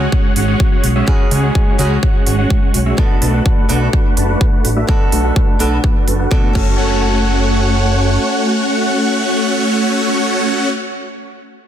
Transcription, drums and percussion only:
0.12 kick
0.36 open hi-hat
0.60 kick
0.84 open hi-hat
1.08 kick
1.31 open hi-hat
1.55 kick
1.79 open hi-hat
2.03 kick
2.27 open hi-hat
2.50 kick
2.74 open hi-hat
2.98 kick
3.22 open hi-hat
3.46 kick
3.69 open hi-hat
3.93 kick
4.17 open hi-hat
4.41 kick
4.65 open hi-hat
4.89 kick
5.12 open hi-hat
5.36 kick
5.60 open hi-hat
5.84 kick
6.08 open hi-hat
6.31 kick
6.55 kick, crash

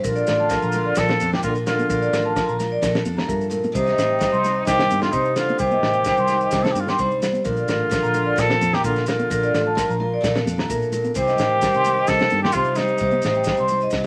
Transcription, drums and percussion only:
0.04 kick, maracas
0.16 maracas
0.27 snare, maracas
0.50 kick, snare, maracas
0.62 maracas
0.72 low conga, maracas
0.95 kick, snare, maracas
1.08 snare, high conga, maracas
1.20 high conga, maracas
1.33 snare, high conga, low conga
1.43 kick, maracas
1.55 maracas
1.67 snare, low conga, maracas
1.79 high conga, maracas
1.90 kick, maracas
2.02 maracas
2.13 snare, maracas
2.36 kick, snare, maracas
2.49 maracas
2.60 snare, low conga, maracas
2.83 kick, snare, maracas
2.95 snare, high conga, maracas
3.05 high conga, maracas
3.18 snare, high conga, low conga
3.29 kick, maracas
3.41 maracas
3.51 low conga, maracas
3.64 high conga, maracas
3.75 kick, maracas
3.87 snare, maracas
3.98 snare, maracas
4.21 kick, snare, maracas
4.34 maracas
4.44 snare, low conga, maracas
4.67 kick, snare, maracas
4.79 snare, high conga, maracas
4.90 high conga, maracas
5.02 snare, high conga, low conga
5.13 kick, maracas
5.25 maracas
5.36 snare, low conga, maracas
5.49 high conga, maracas
5.59 kick, maracas
5.71 high conga, maracas
5.83 snare
5.93 maracas
6.04 kick, snare, maracas
6.17 maracas
6.28 snare, low conga, maracas
6.41 maracas
6.51 kick, snare, maracas
6.64 snare, high conga, maracas
6.75 high conga, maracas
6.87 snare, high conga, low conga, maracas
6.98 kick, maracas
7.11 maracas
7.20 snare, low conga, maracas
7.33 high conga, maracas
7.45 kick, maracas
7.57 maracas
7.68 snare, maracas
7.91 kick, snare, maracas
8.04 maracas
8.14 low conga, maracas
8.38 kick, snare, maracas
8.49 snare, high conga, maracas
8.61 high conga, maracas
8.73 snare, high conga, low conga
8.84 kick, maracas
8.96 snare, maracas
9.06 snare, low conga, maracas
9.19 high conga, maracas
9.31 kick, maracas
9.43 maracas
9.54 snare, maracas
9.77 kick, snare, maracas
9.90 maracas
10.00 low conga
10.24 kick, snare, maracas
10.35 snare, high conga, maracas
10.47 high conga, maracas
10.58 snare, high conga, low conga
10.70 kick, maracas
10.82 maracas
10.92 low conga, maracas
11.04 high conga, maracas
11.15 kick, maracas
11.28 snare, maracas
11.38 snare, maracas
11.61 kick, snare, maracas
11.74 maracas
11.85 low conga, maracas
12.07 kick, snare, maracas
12.19 snare, high conga, maracas
12.30 high conga, maracas
12.45 snare, high conga, low conga
12.52 kick, maracas
12.64 maracas
12.75 snare, low conga, maracas
12.88 maracas
12.98 kick, maracas
13.11 high conga, maracas
13.22 snare, maracas
13.34 maracas
13.44 kick, snare, maracas
13.57 maracas
13.68 low conga, maracas
13.81 maracas
13.90 kick, snare, maracas

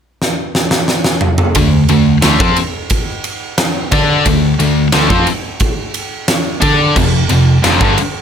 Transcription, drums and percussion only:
0.22 snare
0.55 snare
0.71 snare
0.88 snare
1.04 snare
1.21 mid tom
1.38 mid tom
1.55 kick, ride
1.89 ride
2.22 snare, ride
2.40 kick
2.57 ride
2.90 kick, ride
3.24 ride
3.58 snare, ride
3.92 kick, ride
4.26 kick, ride
4.60 ride
4.92 snare, ride
5.10 kick
5.27 ride
5.60 kick, ride
5.94 ride
6.28 snare, ride
6.62 kick, ride
6.96 kick, crash
7.29 ride
7.64 snare, ride
7.81 kick
7.98 ride

